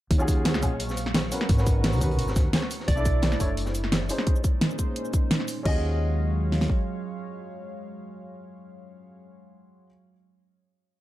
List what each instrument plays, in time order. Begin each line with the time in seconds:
0.11 upright bass D#2, analog synth pad F#3 G#3 F5 C#6, kick, closed hi-hat
0.18 grand piano C#4 F4 F#4 G#4, cabasa
0.28 kick, closed hi-hat, cabasa
0.45 snare, closed hi-hat
0.54 snare, cabasa
0.62 upright bass A#1, grand piano C#4 F4 F#4 G#4, kick, closed hi-hat, cabasa
0.80 closed hi-hat
0.89 snare, cabasa
0.97 closed hi-hat, cabasa
1.06 snare
1.14 snare, closed hi-hat
1.24 snare
1.31 analog synth pad B3 F#4 A#5, grand piano C#4 F#4 A#4 B4, closed hi-hat, open hi-hat, cabasa
1.41 snare
1.49 upright bass G#1, kick, closed hi-hat
1.57 grand piano C#4 F#4 A#4 B4, snare, cabasa
1.67 kick, closed hi-hat, cabasa
1.84 snare, closed hi-hat, open hi-hat
1.93 cabasa
2.00 upright bass D#2, grand piano C#4 F#4 A#4 B4, kick, closed hi-hat, cabasa
2.11 closed hi-hat
2.19 upright bass G#1, closed hi-hat
2.28 snare, cabasa
2.36 upright bass D#2, kick, snare, closed hi-hat, cabasa
2.53 snare, closed hi-hat
2.55 snare
2.62 snare
2.71 analog synth pad A3 D4 E4, closed hi-hat, open hi-hat, cabasa
2.80 snare
2.88 upright bass B1, clean electric guitar D5, kick, closed hi-hat
2.95 grand piano D4 E4 A4 D5, cabasa
3.05 kick, closed hi-hat, cabasa
3.22 snare, closed hi-hat
3.32 snare, cabasa
3.39 upright bass F#1, grand piano D4 E4 A4 C#5, kick, closed hi-hat, cabasa
3.57 closed hi-hat
3.66 snare, cabasa
3.75 closed hi-hat, cabasa
3.84 snare
3.92 snare, closed hi-hat
4.01 snare
4.09 grand piano C#4 D#4 G#4 C5, closed hi-hat, open hi-hat, cabasa
4.18 snare
4.27 analog synth pad A#2 G#3 C#4 D#4 C5, kick, closed hi-hat
4.36 cabasa
4.44 kick, closed hi-hat, cabasa
4.61 snare, closed hi-hat
4.71 cabasa
4.79 kick, closed hi-hat, cabasa
4.96 closed hi-hat
5.05 cabasa
5.13 kick, closed hi-hat, cabasa
5.31 snare, closed hi-hat
5.40 snare
5.48 open hi-hat, cabasa
5.63 upright bass D#2, analog synth pad F#3 G#3 C#5 F5, grand piano C#4 F4 F#4, clean electric guitar D#5, kick, crash
5.68 grand piano G#4
6.52 snare
6.61 snare
6.70 kick